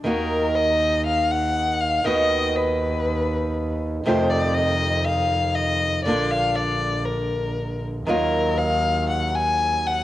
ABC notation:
X:1
M:4/4
L:1/8
Q:1/4=119
K:Ebm
V:1 name="Violin"
B2 e2 f g2 f | ^d2 =B4- B z | =c =d e2 f2 e2 | =d f d2 B3 z |
B2 f2 g a2 g |]
V:2 name="Nylon-string guitar"
[E,B,EG]8 | [^D,=B,^F]8 | [=C,E,=A,=CF]8 | [=D,B,=DF]8 |
[E,G,B,F]8 |]
V:3 name="Double bass" clef=bass
E,,8 | ^D,,8 | F,,8 | B,,,8 |
E,,8 |]